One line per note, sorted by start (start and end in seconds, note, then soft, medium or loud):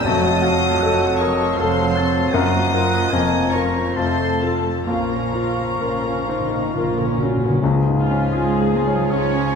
0.04 0.73 F1 medium
0.04 1.16 F2 medium
0.04 0.73 F2 medium
0.04 2.31 F2 medium
0.04 1.58 F#3 medium
0.04 0.24 F#3 medium
0.04 0.33 A3 medium
0.04 0.32 F#4 medium
0.04 0.24 F#4 medium
0.04 1.17 D#5 medium
0.04 0.45 A5 medium
0.04 1.58 A5 medium
0.04 1.21 D#6 loud
0.27 0.45 A3 medium
0.27 0.45 F4 medium
0.42 1.04 F#4 medium
0.42 0.82 F5 medium
0.47 0.65 F#3 medium
0.47 0.65 F#4 medium
0.66 0.84 A3 medium
0.66 0.84 F4 medium
0.81 1.49 F1 medium
0.81 1.50 F2 medium
0.81 1.01 F#3 medium
0.81 1.43 A4 medium
0.81 1.20 F#5 medium
0.85 1.01 F#4 medium
1.04 1.22 A3 soft
1.04 1.22 F4 soft
1.19 1.59 A#4 medium
1.19 1.58 C#5 medium
1.19 1.59 D#5 medium
1.19 1.58 C#6 medium
1.24 1.41 F#3 medium
1.24 1.41 F#4 medium
1.41 1.59 A3 medium
1.41 1.59 F4 soft
1.57 2.25 F1 medium
1.57 2.25 F2 medium
1.57 2.36 F#3 medium
1.57 1.77 F#3 medium
1.57 1.77 F#4 medium
1.57 2.20 A4 medium
1.57 2.34 C5 medium
1.57 1.98 F5 medium
1.57 2.33 A5 medium
1.57 2.34 C6 medium
1.78 1.97 A3 soft
1.78 1.97 F4 medium
1.96 2.15 F#3 medium
1.96 2.35 C4 medium
1.96 2.15 F#4 medium
1.96 2.34 A5 medium
2.15 2.34 A3 medium
2.15 2.33 F4 medium
2.32 3.03 F#1 medium
2.32 3.10 F#2 medium
2.32 3.03 F#2 medium
2.32 3.12 F3 medium
2.32 2.60 A#3 medium
2.32 2.52 C#4 medium
2.32 2.61 F4 medium
2.32 2.52 F4 medium
2.32 3.50 D#5 medium
2.32 3.12 F#5 medium
2.32 3.10 A#5 medium
2.32 3.50 D#6 loud
2.53 2.72 A#3 soft
2.53 2.72 F#4 soft
2.72 2.92 C#4 medium
2.72 2.92 F4 medium
2.72 3.08 F4 medium
2.72 3.09 A#4 medium
2.91 3.12 A#3 soft
2.91 3.11 F#4 soft
3.09 3.86 F1 medium
3.09 3.86 F2 medium
3.09 3.95 F2 medium
3.09 3.96 F3 medium
3.09 3.43 A#3 medium
3.09 3.30 C#4 medium
3.09 3.30 F4 medium
3.09 3.43 F4 medium
3.09 3.53 G#5 medium
3.09 3.98 A#5 medium
3.31 3.53 A#3 soft
3.31 3.50 C#4 soft
3.51 3.71 C#4 soft
3.51 3.74 F4 soft
3.51 3.93 F4 soft
3.51 3.93 A#4 medium
3.51 3.96 C#5 medium
3.51 3.98 A#5 medium
3.51 3.97 C#6 medium
3.73 3.96 A#3 soft
3.73 3.96 C#4 soft
3.93 4.76 F1 medium
3.93 4.76 F2 medium
3.93 4.85 F2 medium
3.93 4.16 C4 soft
3.93 4.16 F4 soft
3.93 4.39 C5 medium
3.93 4.55 A5 medium
3.98 4.54 F3 medium
3.98 4.32 A3 medium
3.98 4.31 F4 medium
3.98 4.41 C6 medium
4.17 4.41 A3 soft
4.17 4.40 A4 soft
4.40 4.64 C4 soft
4.40 4.65 F4 soft
4.40 4.84 F4 soft
4.40 4.87 A4 medium
4.40 4.84 A4 soft
4.40 4.87 A5 medium
4.63 4.87 A3 soft
4.63 4.87 A4 soft
4.85 5.69 A#1 medium
4.85 5.69 A#2 medium
4.85 7.57 A#2 medium
4.85 7.25 F3 soft
4.85 5.09 A#3 soft
4.85 5.24 C#4 soft
4.85 5.08 F4 soft
4.85 7.20 A#4 medium
4.85 7.16 F5 medium
4.85 7.17 A#5 medium
4.85 7.26 C#6 soft
4.89 5.24 F4 medium
5.10 5.34 C#4 soft
5.10 5.34 A#4 soft
5.21 5.30 A#2 soft
5.32 5.39 A#2 soft
5.32 5.57 A#3 soft
5.32 5.57 F4 soft
5.32 6.09 F4 soft
5.40 5.49 A#2 soft
5.51 5.58 A#2 soft
5.56 5.81 C#4 soft
5.56 5.80 A#4 soft
5.60 5.67 A#2 soft
5.68 5.75 A#2 soft
5.76 6.64 A#1 medium
5.76 5.85 A#2 soft
5.76 6.64 A#2 medium
5.76 6.02 A#3 soft
5.76 6.02 F4 soft
5.81 6.25 C#4 soft
5.81 6.56 A#4 soft
5.86 5.93 A#2 soft
5.94 6.02 A#2 soft
6.03 6.12 A#2 soft
6.03 6.28 C#4 soft
6.03 6.28 A#4 soft
6.13 6.21 A#2 soft
6.22 6.30 A#2 medium
6.27 6.39 A#2 medium
6.27 6.52 A#3 soft
6.27 6.74 D#4 medium
6.27 6.52 F4 soft
6.27 6.75 C5 soft
6.40 6.48 A#2 medium
6.50 6.56 A#2 medium
6.50 6.75 C#4 soft
6.50 6.75 A#4 soft
6.57 6.65 A#2 soft
6.66 6.74 A#2 medium
6.74 7.52 A#1 medium
6.74 7.52 A#2 medium
6.74 6.83 A#2 medium
6.74 6.96 A#3 soft
6.74 7.21 F4 medium
6.74 6.96 F4 soft
6.74 7.47 A#4 soft
6.84 6.91 A#2 medium
6.92 7.00 A#2 medium
6.98 7.09 A#2 medium
6.98 7.21 C#4 soft
6.98 7.21 A#4 soft
7.10 7.17 A#2 medium
7.17 7.26 A#2 medium
7.17 7.59 F#4 medium
7.22 7.43 A#3 soft
7.22 7.62 C#4 soft
7.22 7.44 F4 soft
7.27 7.35 A#2 medium
7.37 7.42 A#2 medium
7.43 7.49 A#2 medium
7.43 7.62 C#4 soft
7.43 7.62 A#4 soft
7.50 7.57 A#2 medium
7.60 8.23 C#2 medium
7.60 9.55 C#2 medium
7.60 8.66 C#3 medium
7.60 9.55 F3 medium
7.60 8.28 G#4 medium
7.60 9.55 G#5 medium
7.86 8.23 G#2 soft
7.97 8.71 F4 medium
7.97 8.70 G#5 soft
8.10 8.48 C#4 medium
8.30 9.01 C#2 medium
8.30 8.71 G#3 medium
8.30 9.08 F4 medium
8.30 8.75 F4 medium
8.30 9.08 G#4 medium
8.30 9.06 G#4 medium
8.30 9.12 G#4 medium
8.61 9.02 G#4 soft
8.71 8.83 A#3 medium
8.71 9.46 F4 soft
8.71 9.45 G#5 soft
8.84 8.93 G#3 medium
8.84 9.26 C#5 soft
8.94 9.02 F#3 medium
9.03 9.11 G#3 medium
9.10 9.55 C#2 medium
9.10 9.55 C#4 medium
9.10 9.55 G#4 medium
9.10 9.50 G#4 soft
9.10 9.55 C#5 medium
9.37 9.55 F4 soft
9.47 9.55 F4 medium
9.47 9.55 G#5 soft